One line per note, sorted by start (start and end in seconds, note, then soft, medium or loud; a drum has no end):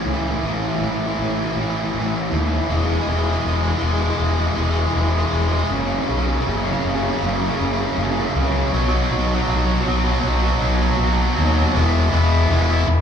0.05 0.32 C#2 medium
0.05 0.14 A2 soft
0.05 0.13 E3 soft
0.13 0.21 A2 medium
0.13 0.21 E3 medium
0.21 0.29 A2 soft
0.21 0.29 E3 soft
0.29 0.36 A2 medium
0.29 0.37 E3 medium
0.37 0.44 A2 soft
0.37 0.45 E3 soft
0.43 0.70 A1 medium
0.43 0.52 A2 medium
0.43 0.52 E3 medium
0.52 0.60 A2 medium
0.52 0.60 E3 soft
0.61 0.68 A2 medium
0.61 0.67 E3 medium
0.68 0.75 A2 medium
0.68 0.75 E3 soft
0.76 0.83 A2 medium
0.76 0.83 E3 medium
0.81 1.08 A1 medium
0.81 0.90 A2 soft
0.81 0.91 E3 medium
0.90 0.98 A2 medium
0.90 0.98 E3 medium
0.98 1.06 A2 soft
0.98 1.06 E3 soft
1.06 1.14 A2 medium
1.06 1.14 E3 medium
1.14 1.22 A2 medium
1.14 1.22 E3 medium
1.19 1.46 A1 medium
1.19 1.29 E3 medium
1.23 1.29 A2 medium
1.29 1.36 A2 medium
1.29 1.37 E3 medium
1.37 1.45 A2 medium
1.37 1.45 E3 medium
1.46 1.53 A2 medium
1.46 1.52 E3 medium
1.52 1.60 A2 medium
1.52 1.60 E3 medium
1.56 1.83 A1 medium
1.60 1.68 A2 medium
1.60 1.68 E3 soft
1.68 1.75 A2 medium
1.68 1.75 E3 medium
1.76 1.83 A2 soft
1.76 1.83 E3 medium
1.83 1.91 A2 medium
1.83 1.91 E3 medium
1.91 2.21 A1 medium
1.91 1.99 A2 soft
1.91 1.99 E3 medium
1.99 2.07 A2 medium
1.99 2.06 E3 medium
2.07 2.14 A2 soft
2.07 2.14 E3 soft
2.15 2.23 A2 medium
2.15 2.22 E3 medium
2.22 2.31 A2 soft
2.22 2.30 E3 soft
2.31 2.59 D#2 medium
2.31 2.39 A2 medium
2.31 2.37 E3 medium
2.38 2.46 A2 soft
2.38 2.45 E3 soft
2.45 2.54 A2 medium
2.45 2.53 E3 medium
2.53 2.61 A2 soft
2.53 2.61 E3 soft
2.61 2.69 A2 medium
2.61 2.69 E3 medium
2.69 2.96 E1 medium
2.69 2.76 E3 medium
2.69 2.77 G#3 medium
2.77 2.85 E3 soft
2.77 2.85 G#3 soft
2.85 2.91 E3 medium
2.85 2.93 G#3 medium
2.92 2.99 E3 soft
2.92 3.01 G#3 medium
3.00 3.08 E3 medium
3.00 3.08 G#3 medium
3.07 3.34 E1 medium
3.07 3.15 E3 soft
3.07 3.15 G#3 medium
3.16 3.22 E3 medium
3.16 3.24 G#3 medium
3.23 3.30 E3 soft
3.23 3.32 G#3 medium
3.31 3.39 E3 medium
3.31 3.39 G#3 medium
3.39 3.46 E3 soft
3.39 3.47 G#3 medium
3.44 3.71 E1 medium
3.44 3.53 E3 medium
3.44 3.54 G#3 medium
3.53 3.61 E3 medium
3.53 3.62 G#3 medium
3.61 3.69 E3 medium
3.61 3.70 G#3 medium
3.70 3.78 E3 medium
3.70 3.77 G#3 medium
3.78 3.85 E3 medium
3.78 3.86 G#3 medium
3.82 4.09 E1 medium
3.82 3.93 E3 medium
3.86 3.93 G#3 medium
3.93 4.01 E3 medium
3.93 4.00 G#3 medium
4.01 4.09 E3 medium
4.01 4.08 G#3 medium
4.09 4.15 E3 medium
4.09 4.17 G#3 medium
4.15 4.23 E3 medium
4.15 4.24 G#3 medium
4.20 4.47 E1 medium
4.24 4.32 E3 medium
4.24 4.31 G#3 medium
4.32 4.39 E3 soft
4.32 4.40 G#3 medium
4.39 4.46 E3 medium
4.39 4.48 G#3 medium
4.47 4.53 E3 medium
4.47 4.56 G#3 medium
4.53 4.61 E3 medium
4.53 4.63 G#3 medium
4.57 4.85 E1 medium
4.63 4.70 E3 medium
4.63 4.71 G#3 medium
4.71 4.78 E3 medium
4.71 4.79 G#3 medium
4.79 4.86 E3 soft
4.79 4.86 G#3 medium
4.86 4.94 E3 medium
4.86 4.94 G#3 medium
4.94 5.22 E1 medium
4.94 5.00 E3 soft
4.94 5.01 G#3 medium
5.01 5.09 E3 medium
5.01 5.09 G#3 medium
5.10 5.16 E3 soft
5.10 5.17 G#3 medium
5.17 5.24 E3 medium
5.17 5.24 G#3 medium
5.24 5.31 E3 soft
5.24 5.32 G#3 medium
5.32 5.60 E1 medium
5.32 5.39 E3 medium
5.32 5.41 G#3 medium
5.40 5.47 E3 soft
5.40 5.48 G#3 soft
5.48 5.55 E3 soft
5.48 5.56 G#3 medium
5.56 5.63 E3 soft
5.56 5.63 G#3 soft
5.63 5.71 E3 medium
5.63 5.71 G#3 medium
5.70 5.97 F#1 medium
5.70 5.78 F#2 medium
5.70 5.78 C#3 medium
5.78 5.85 F#2 soft
5.78 5.86 C#3 medium
5.86 5.94 F#2 medium
5.86 5.94 C#3 medium
5.94 6.01 F#2 soft
5.94 6.02 C#3 medium
6.01 6.09 F#2 medium
6.01 6.09 C#3 medium
6.09 6.36 B1 medium
6.09 6.17 F#2 soft
6.09 6.17 C#3 medium
6.17 6.25 F#2 medium
6.17 6.26 C#3 medium
6.26 6.32 F#2 soft
6.26 6.32 C#3 medium
6.32 6.40 F#2 medium
6.32 6.40 C#3 medium
6.40 6.47 F#2 soft
6.40 6.48 C#3 medium
6.47 6.73 F#1 medium
6.47 6.55 F#2 medium
6.47 6.56 C#3 medium
6.56 6.63 F#2 soft
6.56 6.64 C#3 medium
6.64 6.71 F#2 medium
6.64 6.71 C#3 medium
6.71 6.79 F#2 medium
6.71 6.79 C#3 medium
6.79 6.86 F#2 medium
6.79 6.88 C#3 medium
6.84 7.11 F#1 medium
6.84 6.94 F#2 medium
6.88 6.95 C#3 medium
6.94 7.02 F#2 medium
6.94 7.03 C#3 medium
7.02 7.09 F#2 medium
7.02 7.11 C#3 medium
7.10 7.17 F#2 medium
7.10 7.17 C#3 medium
7.18 7.25 F#2 medium
7.18 7.25 C#3 medium
7.22 7.49 F#1 medium
7.22 7.33 F#2 medium
7.27 7.33 C#3 medium
7.33 7.41 F#2 medium
7.33 7.41 C#3 medium
7.41 7.48 F#2 medium
7.41 7.49 C#3 medium
7.49 7.56 F#2 medium
7.49 7.56 C#3 medium
7.56 7.87 F#1 medium
7.56 7.63 F#2 medium
7.56 7.64 C#3 medium
7.63 7.71 F#2 medium
7.63 7.72 C#3 medium
7.72 7.80 F#2 medium
7.72 7.80 C#3 medium
7.80 7.87 F#2 medium
7.80 7.86 C#3 medium
7.86 7.94 F#2 medium
7.86 7.94 C#3 medium
7.95 8.25 F#1 medium
7.95 8.02 F#2 medium
7.95 8.03 C#3 medium
8.02 8.10 F#2 medium
8.02 8.10 C#3 medium
8.11 8.18 F#2 medium
8.11 8.18 C#3 medium
8.19 8.25 F#2 medium
8.19 8.26 C#3 medium
8.26 8.33 F#2 soft
8.26 8.34 C#3 medium
8.33 8.62 C#2 medium
8.33 8.41 F#2 medium
8.33 8.42 C#3 medium
8.42 8.50 F#2 soft
8.42 8.49 C#3 medium
8.50 8.56 F#2 medium
8.50 8.57 C#3 medium
8.57 8.65 F#2 soft
8.57 8.65 C#3 medium
8.65 8.73 F#2 medium
8.65 8.72 C#3 medium
8.72 9.00 B1 medium
8.72 8.79 B2 medium
8.72 8.81 F#3 medium
8.80 8.87 B2 medium
8.80 8.88 F#3 medium
8.87 8.94 B2 medium
8.87 8.96 F#3 medium
8.95 9.02 B2 medium
8.95 9.03 F#3 medium
9.03 9.11 B2 medium
9.03 9.11 F#3 medium
9.10 9.37 B1 medium
9.10 9.18 B2 medium
9.10 9.18 F#3 medium
9.19 9.26 B2 medium
9.19 9.26 F#3 medium
9.27 9.34 B2 medium
9.27 9.34 F#3 medium
9.35 9.42 B2 medium
9.35 9.42 F#3 medium
9.42 9.50 B2 medium
9.42 9.50 F#3 medium
9.48 9.75 B1 loud
9.48 9.57 B2 medium
9.48 9.58 F#3 medium
9.57 9.65 B2 medium
9.57 9.65 F#3 medium
9.65 9.72 B2 medium
9.65 9.73 F#3 medium
9.73 9.81 B2 medium
9.73 9.81 F#3 medium
9.81 9.88 B2 medium
9.81 9.88 F#3 medium
9.85 10.13 B1 medium
9.85 9.95 B2 medium
9.85 9.96 F#3 medium
9.95 10.03 B2 medium
9.95 10.04 F#3 medium
10.04 10.11 B2 medium
10.04 10.12 F#3 medium
10.12 10.19 B2 medium
10.12 10.19 F#3 medium
10.20 10.50 B1 loud
10.20 10.27 B2 medium
10.20 10.27 F#3 medium
10.27 10.35 B2 medium
10.27 10.36 F#3 medium
10.35 10.42 B2 medium
10.35 10.44 F#3 medium
10.42 10.50 B2 medium
10.42 10.51 F#3 medium
10.51 10.57 B2 medium
10.51 10.58 F#3 medium
10.58 10.88 B1 loud
10.58 10.64 B2 medium
10.58 10.67 F#3 medium
10.65 10.73 B2 medium
10.65 10.74 F#3 medium
10.74 10.81 B2 medium
10.74 10.82 F#3 medium
10.81 10.88 B2 medium
10.81 10.89 F#3 medium
10.88 10.96 B2 medium
10.88 10.97 F#3 medium
10.96 11.26 B1 medium
10.96 11.04 B2 medium
10.96 11.04 F#3 medium
11.04 11.12 B2 medium
11.04 11.12 F#3 medium
11.12 11.20 B2 medium
11.12 11.20 F#3 medium
11.20 11.28 B2 medium
11.20 11.28 F#3 medium
11.28 11.35 B2 medium
11.28 11.35 F#3 medium
11.35 11.64 D#2 medium
11.35 11.43 B2 medium
11.35 11.44 F#3 medium
11.44 11.51 B2 medium
11.44 11.52 F#3 medium
11.51 11.58 B2 medium
11.51 11.58 F#3 medium
11.59 11.67 B2 medium
11.59 11.66 F#3 medium
11.67 11.74 B2 medium
11.67 11.75 F#3 medium
11.75 12.08 E1 loud
11.75 12.12 E3 medium
11.75 12.13 G#3 loud
11.75 12.13 B3 loud
11.75 12.14 E4 loud
12.12 12.45 E1 medium
12.12 12.49 E3 medium
12.12 12.50 G#3 medium
12.12 12.50 B3 medium
12.12 12.52 E4 loud
12.50 12.83 E1 loud
12.50 12.87 E3 medium
12.50 12.70 G#3 loud
12.50 12.68 B3 loud
12.50 12.68 E4 loud
12.68 12.87 G#3 medium
12.68 12.87 B3 medium
12.68 12.88 E4 medium
12.87 13.01 E1 medium
12.87 muted overdriven electric guitar stroke soft